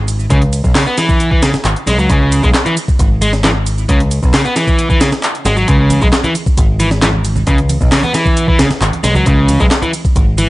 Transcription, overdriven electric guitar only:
0.30 0.41 C#3 medium
0.75 0.85 C#3 medium
0.87 0.95 B3 loud
0.98 1.30 E3 medium
1.31 1.42 E3 medium
1.43 1.51 C#3 medium
1.87 1.97 G#3 medium
1.99 2.09 F#3 medium
2.10 2.42 C#3 medium
2.43 2.49 G#3 medium
2.66 2.75 E3 medium
3.22 3.31 G#3 loud
3.44 3.49 E3 medium
3.89 4.00 C#3 medium
4.34 4.44 C#3 medium
4.45 4.54 B3 loud
4.56 4.89 E3 medium
4.90 5.00 E3 medium
5.01 5.10 C#3 medium
5.46 5.56 G#3 medium
5.57 5.67 F#3 medium
5.68 6.00 C#3 medium
6.02 6.07 G#3 medium
6.24 6.33 E3 medium
6.80 6.89 E3 medium
7.02 7.08 E3 medium
7.47 7.58 C#3 medium
7.92 8.02 C#3 medium
8.03 8.12 B3 loud
8.14 8.47 E3 medium
8.48 8.58 E3 medium
8.59 8.68 C#3 medium
9.04 9.14 G#3 medium
9.15 9.25 F#3 medium
9.26 9.59 C#3 medium
9.60 9.65 G#3 medium
9.82 9.91 E3 medium
10.38 10.47 E3 medium

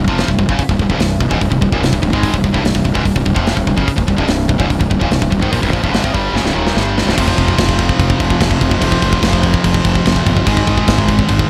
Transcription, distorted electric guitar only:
0.08 0.28 F2 medium
0.08 0.28 C3 medium
0.08 0.28 F3 loud
0.29 0.38 C2 medium
0.29 0.38 G2 medium
0.39 0.49 C2 medium
0.39 0.50 G2 medium
0.49 0.59 F#2 medium
0.49 0.59 C#3 loud
0.61 muted distorted electric guitar stroke medium
0.71 0.80 C2 medium
0.71 0.81 G2 medium
0.81 0.90 C2 medium
0.81 0.91 G2 medium
0.91 1.00 C2 medium
0.91 1.00 G2 medium
1.01 1.17 C2 medium
1.01 1.18 G2 medium
1.22 1.30 C2 medium
1.22 1.30 G2 medium
1.30 1.40 C#2 medium
1.30 1.41 G#2 medium
1.41 1.49 C2 medium
1.41 1.49 G2 medium
1.50 1.60 C2 medium
1.50 1.60 G2 medium
1.61 1.72 C2 medium
1.61 1.72 G2 medium
1.72 1.82 D#2 medium
1.72 1.82 A#2 loud
1.83 1.92 C2 medium
1.83 1.92 G2 medium
1.93 2.01 C2 medium
1.93 2.01 G2 medium
2.02 2.12 C2 medium
2.02 2.12 G2 medium
2.12 2.33 G#2 medium
2.12 2.33 D#3 medium
2.12 2.34 G#3 loud
2.34 2.43 C2 medium
2.34 2.44 G2 medium
2.44 2.51 C2 medium
2.44 2.53 G2 medium
2.53 2.63 C2 medium
2.53 2.63 G2 medium
2.64 2.74 C2 medium
2.64 2.74 G2 medium
2.75 2.83 C2 medium
2.75 2.83 G2 medium
2.84 2.93 C2 medium
2.84 2.95 G2 medium
2.94 3.04 C#2 loud
2.94 3.05 G#2 medium
3.04 3.14 C2 medium
3.04 3.15 G2 medium
3.15 3.24 C2 medium
3.15 3.24 G2 medium
3.25 3.34 C2 medium
3.25 3.35 G2 medium
3.34 3.55 F2 medium
3.34 3.56 C3 loud
3.34 3.56 F3 medium
3.56 3.65 C2 medium
3.56 3.66 G2 medium
3.67 3.76 C2 medium
3.67 3.77 G2 medium
3.76 3.86 F#2 medium
3.76 3.88 C#3 loud
3.87 muted distorted electric guitar stroke medium
3.96 4.06 C2 medium
3.96 4.06 G2 medium
4.07 4.15 C2 medium
4.07 4.16 G2 medium
4.17 4.27 C2 medium
4.17 4.27 G2 medium
4.28 4.46 C2 medium
4.28 4.46 G2 medium
4.48 4.58 C2 medium
4.48 4.58 G2 medium
4.58 4.69 C#2 medium
4.58 4.69 G#2 loud
4.70 4.78 C2 medium
4.70 4.79 G2 medium
4.80 4.89 C2 medium
4.80 4.89 G2 medium
4.90 4.99 C2 medium
4.90 5.01 G2 medium
5.00 5.11 D#2 medium
5.00 5.11 A#2 loud
5.11 5.21 C2 medium
5.11 5.20 G2 medium
5.21 5.29 C2 medium
5.21 5.30 G2 medium
5.31 5.41 C2 medium
5.31 5.41 G2 medium
5.41 5.50 G#2 loud
5.41 5.52 D#3 loud
5.51 5.61 A#2 medium
5.51 5.62 F3 loud
5.62 5.71 C2 loud
5.62 5.72 G2 loud
5.71 5.82 A#2 medium
5.71 5.82 F3 medium
5.82 5.92 C2 medium
5.82 5.91 G2 medium
5.92 6.03 G2 medium
5.92 6.03 D3 medium
6.03 6.13 G#2 medium
6.03 6.14 D#3 loud
6.13 6.34 G2 medium
6.13 6.34 D3 medium
6.13 6.35 G3 medium
6.34 6.44 F#2 medium
6.34 6.45 C#3 loud
6.45 6.54 C2 medium
6.45 6.55 G2 loud
6.54 6.75 D#2 medium
6.54 6.75 A#2 medium
6.54 6.76 D#3 loud
6.76 7.07 G2 medium
6.76 7.07 D3 medium
6.76 7.07 G3 loud
7.07 7.16 C2 medium
7.07 7.17 G2 loud
7.16 8.78 F2 medium
7.16 8.79 C3 loud
7.16 8.81 F3 loud
8.80 10.44 F2 medium
8.80 10.44 C3 medium
8.80 10.45 F3 loud
10.46 11.50 G#2 medium
10.46 11.50 D#3 loud
10.46 11.50 G#3 loud

